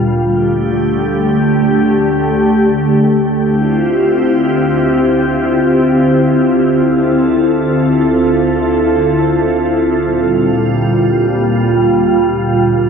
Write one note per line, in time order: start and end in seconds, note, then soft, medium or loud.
0.00 0.12 D2 medium
0.00 0.12 A#2 medium
0.00 0.12 G3 medium
0.00 0.12 F4 medium
0.16 3.41 D2 medium
0.16 3.41 D3 medium
0.16 3.41 A3 medium
0.16 3.41 G4 medium
3.44 12.89 D2 medium
3.44 9.98 D3 medium
3.44 9.98 C4 medium
3.44 9.98 E4 medium
3.44 9.98 F4 medium
3.44 6.70 G4 medium
6.73 9.99 A4 medium
10.02 12.89 A#2 medium
10.02 12.89 G3 medium
10.02 12.89 F4 loud